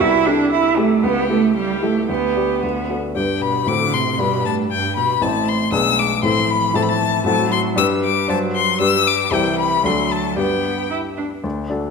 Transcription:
0.00 C2 E4
0.26 D4 E4 G4 A4
0.52 E4
0.77 A3 E4 G4 A4
1.03 C#2 B3 G4
1.29 A3 E4 G4 A4
1.56 G3 G4
1.82 A3 E4 G4 A4
2.09 D2 B3 G4
2.37 D4 G4
2.62 D2 F#4
2.90 D4 F#4 A4
3.15 G2 D4 G4 B4 G5
3.42 B2 B5
3.66 A2 D3 C4 F#4 A4 D6
3.93 C3 C6
4.18 G2 B2 D4 G4 B4 B5
4.45 A2 A5
4.72 G2 G5
4.97 B2 B5
5.21 A1 A3 C4 E4 C5 A5
5.48 C6
5.72 B1 G#3 B3 D4 G#4 E6
5.99 D6
6.23 A2 E3 C4 E4 A4 C6
6.50 B5
6.74 A2 C4 E4 A4 A5
6.83 B5
6.89 A5
7.25 A2 F#3 C4 F#4 A4 A5
7.52 C6
7.76 G2 G3 D4 G4 B4 E6
8.04 D6
8.28 G2 F#3 D4 F#4 C5 A5
8.56 C6
8.79 G2 G3 D4 G4 B4 E6
9.08 D6
9.31 C2 E3 E4 G4 C5 G5
9.60 B5
9.84 D2 F#3 D4 F#4 A4 C6
10.12 A5
10.36 G2 B3 D4 G4 B4 G5
10.90 E4
11.17 D4
11.44 D2
11.70 D4 F#4 A4

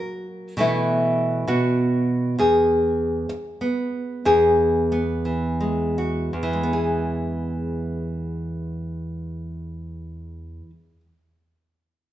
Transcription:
Already playing: F#3 A#3 F#4 A#4
0.57 B2 E3 A3 B3 E4
1.47 B2 F#4
2.39 E2 G#4
3.29 muted nylon-string guitar stroke
3.61 B3
4.25 E2 G#4
4.92 B3
5.25 E3
5.61 G#3
5.98 F#4
6.33 E2
6.43 E3
6.53 G#3
6.63 B3
6.73 G#4

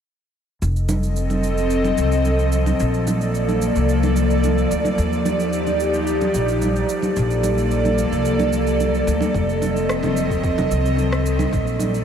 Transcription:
0.62 F1 F3 C4 A4 D#5, cabasa
0.76 cabasa
0.89 high conga, cabasa
1.03 cabasa
1.16 cabasa
1.30 high conga, cabasa
1.43 cabasa
1.58 cabasa
1.70 cabasa
1.84 high conga, cabasa
1.98 C2, cabasa
2.12 cabasa
2.25 high conga, cabasa
2.39 cabasa
2.52 cabasa
2.66 high conga, cabasa
2.80 A#1 A#3 A4 D5, cabasa
2.94 cabasa
3.07 high conga, cabasa
3.21 cabasa
3.35 cabasa
3.48 high conga, cabasa
3.62 cabasa
3.76 C2, cabasa
3.89 cabasa
4.03 high conga, cabasa
4.16 cabasa
4.30 cabasa
4.44 high conga, cabasa
4.58 cabasa
4.71 D2, cabasa
4.85 high conga, cabasa
4.98 D#2 D#4 G4, cabasa
5.13 cabasa
5.25 high conga, cabasa
5.40 cabasa
5.53 cabasa
5.67 high conga, cabasa
5.80 cabasa
5.94 cabasa
6.07 cabasa
6.21 high conga, cabasa
6.34 A#1, cabasa
6.48 cabasa
6.62 high conga, cabasa
6.76 cabasa
6.89 A#3 A4 D5, cabasa
7.02 high conga, cabasa
7.16 A#1, cabasa
7.31 cabasa
7.43 high conga, cabasa
7.58 cabasa
7.71 cabasa
7.85 high conga, cabasa
7.98 cabasa
8.12 C2, cabasa
8.25 cabasa
8.39 high conga, cabasa
8.53 cabasa
8.67 cabasa
8.80 high conga, cabasa
8.95 cabasa
9.07 D2, cabasa
9.21 high conga, cabasa
9.34 F1 C4 D#5, kick, cabasa
9.49 cabasa
9.62 high conga, cabasa
9.76 cabasa
9.89 cross-stick, cabasa
10.03 high conga, low conga, cabasa
10.17 cabasa
10.30 kick, cabasa
10.44 kick, cabasa
10.58 high conga, low conga, cabasa
10.71 C2, cabasa
10.86 cabasa
10.97 high conga, cabasa
11.12 cross-stick, cabasa
11.26 cabasa
11.39 high conga, cabasa
11.53 A#1 A#3 A4 D5, kick, cabasa
11.67 cabasa
11.79 high conga, cabasa
11.94 cabasa

